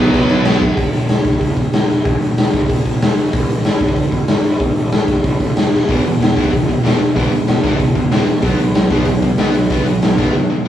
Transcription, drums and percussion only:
0.14 kick loud
0.14 crash medium
0.30 crash medium
0.45 snare loud
0.45 crash medium
0.61 kick medium
0.61 crash medium
0.77 kick loud
0.77 open hi-hat medium
0.93 open hi-hat medium
1.09 snare loud
1.09 open hi-hat medium
1.25 kick medium
1.25 open hi-hat medium
1.33 kick medium
1.41 kick medium
1.41 open hi-hat medium
1.57 kick medium
1.57 open hi-hat soft
1.73 snare loud
1.73 open hi-hat medium
1.90 open hi-hat medium
2.05 kick loud
2.05 open hi-hat medium
2.22 open hi-hat medium
2.38 snare loud
2.38 open hi-hat medium
2.54 kick loud
2.54 open hi-hat medium
2.61 kick medium
2.70 kick loud
2.70 open hi-hat medium
2.86 kick medium
2.86 open hi-hat medium
3.02 snare loud
3.02 open hi-hat medium
3.18 open hi-hat medium
3.33 kick loud
3.33 open hi-hat medium
3.50 open hi-hat medium
3.65 snare loud
3.65 open hi-hat medium
3.81 kick medium
3.81 open hi-hat medium
3.89 kick medium
3.96 kick loud
3.96 open hi-hat medium
4.12 kick medium
4.12 open hi-hat soft
4.28 snare loud
4.28 open hi-hat medium
4.44 open hi-hat medium
4.60 kick loud
4.60 open hi-hat medium
4.76 open hi-hat medium
4.92 snare loud
4.92 open hi-hat medium
5.08 kick medium
5.08 open hi-hat medium
5.16 kick medium
5.24 kick loud
5.24 open hi-hat medium
5.40 kick medium
5.40 open hi-hat medium
5.57 snare loud
5.57 open hi-hat medium
5.74 snare medium
5.89 kick loud
5.89 open hi-hat medium
6.05 open hi-hat medium
6.22 snare loud
6.22 open hi-hat medium
6.37 kick loud
6.37 open hi-hat medium
6.45 kick medium
6.53 kick loud
6.53 open hi-hat medium
6.69 kick medium
6.69 open hi-hat medium
6.86 snare loud
6.86 open hi-hat medium
7.01 open hi-hat medium
7.16 kick loud
7.16 open hi-hat medium
7.32 open hi-hat medium
7.48 snare medium
7.48 open hi-hat medium
7.63 kick loud
7.63 open hi-hat medium
7.72 kick medium
7.80 kick medium
7.80 open hi-hat medium
7.95 kick medium
7.95 open hi-hat medium
8.12 snare loud
8.12 open hi-hat medium
8.28 open hi-hat medium
8.42 kick loud
8.42 open hi-hat medium
8.59 open hi-hat medium
8.75 snare loud
8.75 open hi-hat medium
8.90 kick loud
8.90 open hi-hat medium
8.98 kick medium
9.05 kick medium
9.05 open hi-hat medium
9.22 kick medium
9.22 open hi-hat medium
9.38 snare loud
9.38 open hi-hat medium
9.54 open hi-hat medium
9.70 kick loud
9.70 open hi-hat medium
9.86 open hi-hat medium
10.02 snare loud
10.02 open hi-hat medium
10.18 kick medium
10.18 open hi-hat medium
10.26 kick medium

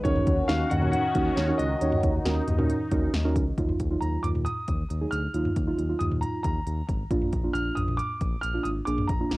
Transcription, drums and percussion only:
0.05 kick loud
0.05 closed hi-hat medium
0.16 mid tom medium
0.27 kick loud
0.27 closed hi-hat medium
0.49 snare loud
0.49 closed hi-hat medium
0.71 closed hi-hat medium
0.71 mid tom loud
0.71 cowbell medium
0.82 mid tom loud
0.93 closed hi-hat medium
1.15 kick medium
1.15 closed hi-hat medium
1.37 snare loud
1.37 closed hi-hat medium
1.59 closed hi-hat medium
1.81 closed hi-hat medium
1.92 mid tom medium
2.03 kick loud
2.03 closed hi-hat medium
2.25 snare loud
2.25 closed hi-hat medium
2.48 closed hi-hat medium
2.48 mid tom medium
2.59 mid tom loud
2.70 closed hi-hat medium
2.91 kick loud
2.91 closed hi-hat medium
3.14 snare loud
3.14 closed hi-hat medium
3.36 kick loud
3.36 closed hi-hat medium
3.58 kick loud
3.58 closed hi-hat medium
3.69 mid tom medium
3.80 kick medium
3.80 closed hi-hat medium
4.02 closed hi-hat medium
4.24 closed hi-hat medium
4.24 mid tom medium
4.35 mid tom medium
4.46 closed hi-hat medium
4.68 kick medium
4.68 closed hi-hat medium
4.90 closed hi-hat medium
5.12 closed hi-hat medium
5.34 closed hi-hat medium
5.45 mid tom medium
5.56 kick medium
5.56 closed hi-hat medium
5.79 closed hi-hat medium
6.01 closed hi-hat medium
6.01 mid tom medium
6.12 mid tom medium
6.23 closed hi-hat medium
6.44 kick medium
6.44 closed hi-hat medium
6.67 closed hi-hat medium
6.89 kick medium
6.89 closed hi-hat medium
7.11 kick loud
7.11 closed hi-hat medium
7.22 mid tom medium
7.33 kick loud
7.33 closed hi-hat medium
7.55 closed hi-hat medium
7.77 closed hi-hat medium
7.77 mid tom medium
7.88 mid tom medium
7.99 closed hi-hat medium
8.21 kick medium
8.21 closed hi-hat medium
8.43 closed hi-hat medium
8.65 closed hi-hat medium
8.87 closed hi-hat medium
8.98 mid tom medium
9.09 kick medium
9.09 closed hi-hat medium
9.31 snare loud
9.31 closed hi-hat medium

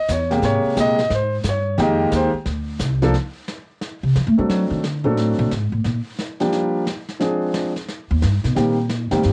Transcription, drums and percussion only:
0.08 kick soft
0.08 snare medium
0.08 hi-hat pedal medium
0.31 snare soft
0.43 brush sweep medium
0.43 kick soft
0.43 snare medium
0.77 kick soft
0.77 snare medium
0.77 hi-hat pedal medium
0.99 snare soft
1.10 brush sweep soft
1.10 kick soft
1.10 snare soft
1.44 kick soft
1.44 snare medium
1.44 hi-hat pedal medium
1.78 brush sweep medium
1.78 kick soft
1.78 snare soft
2.11 kick soft
2.11 snare medium
2.11 hi-hat pedal medium
2.46 brush sweep soft
2.46 kick soft
2.46 snare soft
2.79 kick soft
2.79 snare medium
2.79 hi-hat pedal medium
3.02 snare soft
3.14 brush sweep soft
3.14 snare soft
3.48 snare medium
3.81 brush sweep medium
3.81 snare soft
4.15 snare medium
4.49 brush sweep medium
4.49 snare soft
4.84 snare medium
5.17 brush sweep medium
5.17 snare soft
5.51 snare medium
5.84 brush sweep soft
5.84 snare soft
6.19 snare medium
6.40 snare soft
6.52 brush sweep soft
6.52 snare soft
6.87 snare medium
7.09 snare soft
7.20 brush sweep soft
7.20 snare soft
7.54 snare medium
7.76 snare soft
7.88 brush sweep medium
7.88 snare soft
8.22 snare medium
8.44 snare soft
8.56 brush sweep soft
8.56 snare soft
8.89 snare medium
9.11 snare soft
9.23 brush sweep soft
9.23 snare soft

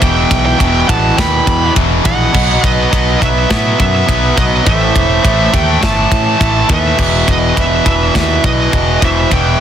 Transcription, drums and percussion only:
0.02 kick medium
0.02 ride loud
0.31 kick medium
0.31 ride medium
0.60 kick medium
0.60 ride loud
0.89 kick medium
0.89 ride medium
1.18 kick medium
1.18 snare loud
1.18 ride loud
1.47 kick medium
1.47 ride medium
1.76 kick medium
1.76 ride loud
2.05 kick medium
2.05 ride medium
2.34 kick medium
2.34 crash loud
2.64 kick medium
2.64 ride medium
2.93 kick medium
2.93 ride loud
3.22 kick medium
3.22 ride medium
3.50 kick medium
3.50 snare loud
3.50 ride loud
3.80 kick medium
3.80 ride medium
4.09 kick medium
4.09 ride loud
4.38 kick medium
4.38 ride medium
4.66 kick medium
4.66 ride loud
4.96 kick medium
4.96 ride medium
5.25 kick medium
5.25 ride loud
5.54 kick medium
5.54 ride medium
5.83 kick medium
5.83 snare loud
5.83 ride loud
6.12 kick medium
6.12 ride medium
6.41 kick medium
6.41 ride loud
6.69 kick medium
6.69 ride medium
6.99 kick medium
6.99 crash loud
7.28 kick medium
7.28 ride medium
7.57 kick medium
7.57 ride loud
7.86 kick loud
7.86 ride medium
8.15 kick medium
8.15 snare loud
8.15 ride loud
8.44 kick medium
8.44 ride medium
8.73 kick medium
8.73 ride loud
9.02 kick medium
9.02 ride medium
9.31 kick medium
9.31 ride loud

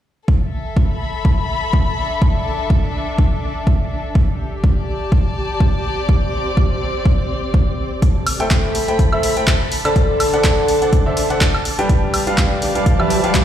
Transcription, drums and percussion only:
0.28 kick loud
0.77 kick loud
1.25 kick loud
1.73 kick loud
2.22 kick loud
2.70 kick loud
3.18 kick loud
3.67 kick loud
4.15 kick loud
4.64 kick loud
5.12 kick loud
5.60 kick loud
6.09 kick loud
6.57 kick loud
7.06 kick loud
7.54 kick loud
8.02 kick loud
8.02 closed hi-hat medium
8.27 open hi-hat loud
8.27 high woodblock medium
8.40 closed hi-hat soft
8.51 kick loud
8.51 clap loud
8.51 closed hi-hat medium
8.75 open hi-hat loud
8.88 closed hi-hat soft
8.99 kick loud
8.99 closed hi-hat medium
9.13 high woodblock medium
9.23 open hi-hat loud
9.37 closed hi-hat soft
9.47 kick loud
9.47 clap loud
9.47 closed hi-hat medium
9.72 open hi-hat loud
9.85 closed hi-hat soft
9.85 high woodblock medium
9.96 kick loud
9.96 closed hi-hat medium
10.20 open hi-hat loud
10.20 high woodblock medium
10.33 closed hi-hat soft
10.44 kick medium
10.44 clap loud
10.44 closed hi-hat medium
10.68 open hi-hat loud
10.82 closed hi-hat soft
10.93 kick loud
10.93 closed hi-hat medium
11.17 open hi-hat loud
11.30 closed hi-hat soft
11.41 kick loud
11.41 clap loud
11.41 closed hi-hat medium
11.55 high woodblock medium
11.65 open hi-hat loud
11.79 closed hi-hat medium
11.89 kick loud
11.89 closed hi-hat medium
12.14 open hi-hat loud
12.14 high woodblock medium
12.27 closed hi-hat medium
12.38 kick medium
12.38 clap loud
12.38 closed hi-hat medium
12.62 open hi-hat loud
12.75 closed hi-hat medium
12.86 kick loud
12.86 closed hi-hat medium
13.00 high woodblock medium
13.10 open hi-hat medium
13.24 closed hi-hat medium
13.34 kick loud
13.34 clap loud
13.34 closed hi-hat medium

